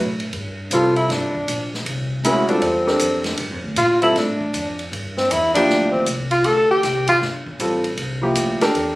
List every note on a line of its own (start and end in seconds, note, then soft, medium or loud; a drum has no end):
0.00 0.32 A2 medium
0.20 ride soft
0.33 0.70 G2 medium
0.33 ride medium
0.71 1.08 C2 medium
0.71 1.30 G3 medium
0.71 1.30 C4 medium
0.71 0.95 F4 medium
0.71 1.31 F4 medium
0.71 1.31 A4 medium
0.71 hi-hat pedal medium
0.71 ride medium
0.96 1.12 E4 medium
0.96 ride soft
1.09 1.46 G1 medium
1.09 1.73 D4 medium
1.09 snare soft
1.09 ride medium
1.35 kick medium
1.48 1.84 A#1 medium
1.48 hi-hat pedal soft
1.48 ride medium
1.74 snare soft
1.85 2.23 C2 medium
1.85 ride medium
2.24 2.61 D2 medium
2.24 2.47 G#3 medium
2.24 2.47 C#4 medium
2.24 2.48 E4 medium
2.24 2.48 F#4 medium
2.24 2.48 A#4 medium
2.24 hi-hat pedal medium
2.24 ride medium
2.48 2.82 G3 medium
2.48 2.83 C4 medium
2.48 2.64 D4 medium
2.48 2.83 F4 medium
2.48 2.83 A4 medium
2.48 ride soft
2.61 2.99 E2 medium
2.61 3.26 C4 medium
2.61 ride medium
2.87 3.36 D4 medium
2.87 3.36 G4 medium
2.87 3.36 A4 medium
2.87 3.36 A#4 medium
2.87 snare soft
2.99 3.37 F2 medium
2.99 hi-hat pedal medium
2.99 ride medium
3.24 snare soft
3.24 ride soft
3.37 3.51 G2 medium
3.37 ride medium
3.51 3.63 F2 medium
3.64 3.76 D2 medium
3.76 4.14 A#2 medium
3.76 4.01 F4 medium
3.76 hi-hat pedal medium
3.76 ride medium
4.02 4.14 G3 medium
4.02 4.14 C4 medium
4.02 4.19 E4 medium
4.02 4.15 F4 medium
4.02 4.15 A4 medium
4.02 ride medium
4.15 4.52 A2 medium
4.15 4.80 D4 medium
4.15 snare soft
4.15 ride medium
4.41 kick medium
4.53 4.91 F2 medium
4.53 hi-hat pedal medium
4.53 ride medium
4.79 ride soft
4.92 5.29 G2 medium
4.92 ride medium
5.17 5.33 C4 medium
5.17 snare soft
5.30 5.67 E2 medium
5.30 5.54 E4 medium
5.30 hi-hat pedal medium
5.30 ride medium
5.54 6.04 F3 medium
5.54 6.04 A#3 medium
5.54 5.90 D4 medium
5.54 6.04 E4 medium
5.54 6.05 G4 medium
5.54 ride medium
5.69 6.06 D2 medium
5.69 snare soft
5.91 6.05 C4 medium
5.91 kick medium
6.06 6.44 C2 medium
6.06 hi-hat pedal medium
6.06 ride medium
6.31 6.47 F4 medium
6.31 ride soft
6.44 6.82 D2 medium
6.44 6.70 A4 loud
6.44 ride medium
6.71 7.06 G4 loud
6.83 7.20 C2 medium
6.83 snare soft
6.83 hi-hat pedal medium
6.83 ride medium
7.08 7.17 F4 loud
7.08 kick medium
7.08 ride medium
7.21 7.58 G1 medium
7.21 snare soft
7.46 kick medium
7.59 7.97 A1 medium
7.59 7.82 G3 medium
7.59 7.82 C4 medium
7.59 7.82 F4 medium
7.59 7.83 A4 medium
7.59 hi-hat pedal medium
7.59 ride medium
7.84 ride medium
7.97 8.35 C2 medium
7.97 ride medium
8.21 8.58 F3 medium
8.21 8.58 A#3 medium
8.21 8.58 E4 medium
8.21 8.59 G4 medium
8.35 8.73 D2 medium
8.35 hi-hat pedal medium
8.35 ride medium
8.61 8.95 D4 medium
8.61 8.95 G4 medium
8.61 8.95 A4 medium
8.61 8.95 A#4 medium
8.61 snare medium
8.61 ride medium
8.74 8.95 E2 medium
8.74 ride medium